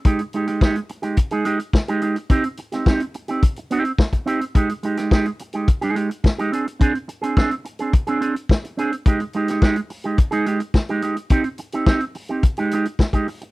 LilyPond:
<<
  \new Staff \with { instrumentName = "Clean electric guitar" } { \time 4/4 \key ees \major \tempo 4 = 107 <aes ees' g'>16 r16 <aes ees' g'>16 <aes ees' g'>16 <aes ees' g'>16 r8 <aes ees' g'>16 r16 <aes ees' aes'>16 <aes ees' g'>16 r8 <aes ees' g'>16 <aes ees' g'>16 r16 | <c' ees' g'>16 r8 <c' ees' g'>16 <c' ees' g'>16 r8 <c' ees' g'>16 r8 <c' ees' g'>16 r8. <c' ees' g'>16 r16 | <aes ees' g'>16 r16 <aes ees' g'>16 <aes ees' g'>16 <aes ees' g'>16 r8 <aes ees' g'>16 r16 <aes ees' aes'>16 <aes ees' g'>16 r8 <aes ees' g'>16 <c' d' aes'>16 r16 | <c' d' aes'>16 r8 <c' d' aes'>16 <c' d' aes'>16 r8 <c' d' aes'>16 r16 <c' d' aes'>16 <c' d' aes'>16 r8. <c' d' aes'>16 r16 |
<aes ees' g'>16 r16 <aes ees' g'>16 <aes ees' g'>16 <aes ees' g'>16 r8 <aes ees' g'>16 r16 <aes ees' aes'>16 <aes ees' g'>16 r8 <aes ees' g'>16 <aes ees' g'>16 r16 | <c' ees' g'>16 r8 <c' ees' g'>16 <c' ees' g'>16 r8 <c' ees' g'>16 r16 <aes ees' g'>16 <aes ees' g'>16 r8 <aes ees' g'>16 r8 | }
  \new DrumStaff \with { instrumentName = "Drums" } \drummode { \time 4/4 <hh bd>16 hh16 hh16 hh16 <bd sn>16 hh16 hh16 hh16 <hh bd>16 hh16 hh16 hh16 <bd sn>16 hh16 hh16 hh16 | <hh bd>16 hh16 hh16 <hh sn>16 <bd sn>16 hh16 hh16 hh16 <hh bd>16 hh16 hh16 hh16 <bd sn>16 <hh bd>16 hh16 hh16 | <hh bd>16 hh16 hh16 <hh sn>16 <bd sn>16 hh16 hh16 hh16 <hh bd>16 hh16 hh16 hh16 <bd sn>16 hh16 hh16 hh16 | <hh bd>16 hh16 hh16 hh16 <bd sn>16 hh16 hh16 hh16 <hh bd>16 hh16 hh16 hh16 <bd sn>16 hh16 hh16 hh16 |
<hh bd>16 hh16 hh16 <hh sn>16 <bd sn>16 hh16 hho16 hh16 <hh bd>16 hh16 hh16 hh16 <bd sn>16 hh16 hh16 hh16 | <hh bd>16 hh16 hh16 hh16 <bd sn>16 hh16 hho16 hh16 <hh bd>16 hh16 hh16 hh16 <bd sn>16 <hh bd>16 hho16 hh16 | }
>>